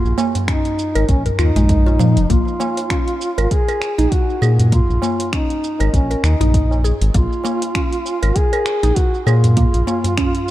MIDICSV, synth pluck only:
0, 0, Header, 1, 2, 480
1, 0, Start_track
1, 0, Key_signature, -5, "minor"
1, 0, Tempo, 606061
1, 1819, Time_signature, 4, 2, 24, 8
1, 8322, End_track
2, 0, Start_track
2, 0, Title_t, "Synth pluck"
2, 0, Program_c, 0, 84
2, 140, Note_on_c, 0, 58, 75
2, 269, Note_off_c, 0, 58, 0
2, 380, Note_on_c, 0, 61, 82
2, 509, Note_off_c, 0, 61, 0
2, 756, Note_on_c, 0, 70, 81
2, 854, Note_off_c, 0, 70, 0
2, 995, Note_on_c, 0, 70, 75
2, 1089, Note_off_c, 0, 70, 0
2, 1100, Note_on_c, 0, 65, 77
2, 1229, Note_off_c, 0, 65, 0
2, 1237, Note_on_c, 0, 56, 98
2, 1329, Note_off_c, 0, 56, 0
2, 1340, Note_on_c, 0, 56, 82
2, 1469, Note_off_c, 0, 56, 0
2, 1476, Note_on_c, 0, 65, 82
2, 1569, Note_off_c, 0, 65, 0
2, 1579, Note_on_c, 0, 53, 105
2, 1709, Note_off_c, 0, 53, 0
2, 1820, Note_on_c, 0, 58, 86
2, 1898, Note_off_c, 0, 58, 0
2, 2061, Note_on_c, 0, 58, 80
2, 2190, Note_off_c, 0, 58, 0
2, 2301, Note_on_c, 0, 61, 81
2, 2430, Note_off_c, 0, 61, 0
2, 2676, Note_on_c, 0, 70, 80
2, 2774, Note_off_c, 0, 70, 0
2, 2918, Note_on_c, 0, 70, 81
2, 3143, Note_off_c, 0, 70, 0
2, 3155, Note_on_c, 0, 63, 99
2, 3254, Note_off_c, 0, 63, 0
2, 3499, Note_on_c, 0, 68, 73
2, 3629, Note_off_c, 0, 68, 0
2, 3740, Note_on_c, 0, 58, 84
2, 3817, Note_off_c, 0, 58, 0
2, 3979, Note_on_c, 0, 58, 78
2, 4109, Note_off_c, 0, 58, 0
2, 4219, Note_on_c, 0, 61, 84
2, 4349, Note_off_c, 0, 61, 0
2, 4595, Note_on_c, 0, 70, 75
2, 4694, Note_off_c, 0, 70, 0
2, 4836, Note_on_c, 0, 70, 78
2, 5062, Note_off_c, 0, 70, 0
2, 5074, Note_on_c, 0, 63, 94
2, 5173, Note_off_c, 0, 63, 0
2, 5420, Note_on_c, 0, 68, 74
2, 5549, Note_off_c, 0, 68, 0
2, 5658, Note_on_c, 0, 58, 90
2, 5736, Note_off_c, 0, 58, 0
2, 5897, Note_on_c, 0, 58, 83
2, 6028, Note_off_c, 0, 58, 0
2, 6138, Note_on_c, 0, 61, 83
2, 6268, Note_off_c, 0, 61, 0
2, 6514, Note_on_c, 0, 70, 79
2, 6613, Note_off_c, 0, 70, 0
2, 6754, Note_on_c, 0, 70, 78
2, 6981, Note_off_c, 0, 70, 0
2, 6995, Note_on_c, 0, 63, 102
2, 7094, Note_off_c, 0, 63, 0
2, 7338, Note_on_c, 0, 68, 73
2, 7469, Note_off_c, 0, 68, 0
2, 7578, Note_on_c, 0, 58, 86
2, 7656, Note_off_c, 0, 58, 0
2, 7819, Note_on_c, 0, 58, 79
2, 7949, Note_off_c, 0, 58, 0
2, 8059, Note_on_c, 0, 61, 82
2, 8189, Note_off_c, 0, 61, 0
2, 8322, End_track
0, 0, End_of_file